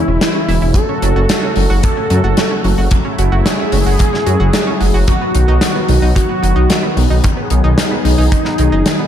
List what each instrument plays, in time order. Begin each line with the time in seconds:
Already playing: analog synth pad C#3 E3 G#3 E4, analog synth lead E4
0.08 detuned saw bass E1, synth arpeggio sound C#4
0.21 synth arpeggio sound E3, snare, closed hi-hat
0.35 synth arpeggio sound C#4
0.48 detuned saw bass E1, synth arpeggio sound E4, open hi-hat
0.62 detuned saw bass E1, synth arpeggio sound E4
0.74 analog synth pad F#3 A3 F#4, synth arpeggio sound F#3, analog synth lead A4, kick, closed hi-hat
0.89 synth arpeggio sound C#4
1.02 detuned saw bass F#1, synth arpeggio sound F#3, closed hi-hat
1.16 detuned saw bass F#1, synth arpeggio sound F#4
1.29 synth arpeggio sound F#3, snare, closed hi-hat
1.43 synth arpeggio sound C#4
1.56 detuned saw bass F#1, synth arpeggio sound F#3, open hi-hat
1.70 detuned saw bass F#1, synth arpeggio sound F#4
1.83 synth arpeggio sound F#3, analog synth lead A4, kick, closed hi-hat
1.97 synth arpeggio sound C#4
2.10 detuned saw bass F#2, synth arpeggio sound F#3, closed hi-hat
2.24 detuned saw bass F#1, synth arpeggio sound F#4
2.37 synth arpeggio sound F#3, snare, closed hi-hat
2.51 synth arpeggio sound C#4
2.64 detuned saw bass F#1, synth arpeggio sound F#3, open hi-hat
2.78 detuned saw bass F#1, synth arpeggio sound F#4
2.91 synth arpeggio sound F#3, analog synth pad E4, kick, closed hi-hat
3.05 synth arpeggio sound C#4
3.19 detuned saw bass F#1, synth arpeggio sound F#3, closed hi-hat
3.32 detuned saw bass F#1, synth arpeggio sound F#4
3.46 synth arpeggio sound F#3, analog synth lead G#4, snare, closed hi-hat
3.60 synth arpeggio sound C#4
3.72 detuned saw bass F#1, synth arpeggio sound F#3, open hi-hat
3.86 detuned saw bass F#1, synth arpeggio sound F#4
3.99 synth arpeggio sound F#3, kick, closed hi-hat
4.13 synth arpeggio sound C#4, snare
4.26 detuned saw bass F#2, synth arpeggio sound F#3, closed hi-hat
4.40 detuned saw bass F#1, synth arpeggio sound F#4
4.53 synth arpeggio sound F#3, snare, closed hi-hat
4.67 synth arpeggio sound C#4
4.81 detuned saw bass F#1, synth arpeggio sound F#3, open hi-hat
4.94 detuned saw bass F#1, synth arpeggio sound F#4
5.08 synth arpeggio sound D#3, analog synth pad D#3 B3 F#4, analog synth lead F#4, kick, closed hi-hat
5.21 synth arpeggio sound B3
5.35 detuned saw bass B1, synth arpeggio sound D#3, closed hi-hat
5.48 detuned saw bass B1, synth arpeggio sound D#4
5.61 synth arpeggio sound D#3, snare, closed hi-hat
5.75 synth arpeggio sound B3
5.89 detuned saw bass B1, synth arpeggio sound D#3, open hi-hat
6.02 detuned saw bass B1, synth arpeggio sound D#4
6.16 synth arpeggio sound D#3, analog synth lead F#4, kick, closed hi-hat
6.29 synth arpeggio sound B3
6.43 detuned saw bass F#1, synth arpeggio sound D#3, closed hi-hat
6.56 detuned saw bass B1, synth arpeggio sound D#4
6.70 synth arpeggio sound D#3, snare, closed hi-hat
6.83 synth arpeggio sound B3
6.97 detuned saw bass B1, synth arpeggio sound D#3, open hi-hat
7.10 detuned saw bass B1, synth arpeggio sound D#4
7.24 synth arpeggio sound D#3, analog synth pad G#4, kick, closed hi-hat
7.37 synth arpeggio sound B3
7.50 detuned saw bass B1, synth arpeggio sound D#3, closed hi-hat
7.64 detuned saw bass B1, synth arpeggio sound D#4
7.78 synth arpeggio sound D#3, analog synth lead D#4, snare, closed hi-hat
7.91 synth arpeggio sound B3
8.05 detuned saw bass B1, synth arpeggio sound D#3, open hi-hat
8.18 detuned saw bass B1, synth arpeggio sound D#4
8.32 synth arpeggio sound D#3, kick, closed hi-hat
8.45 synth arpeggio sound B3, snare
8.58 detuned saw bass B1, synth arpeggio sound D#3, closed hi-hat
8.72 detuned saw bass F#1, synth arpeggio sound D#4
8.86 synth arpeggio sound D#3, snare, closed hi-hat
8.99 synth arpeggio sound B3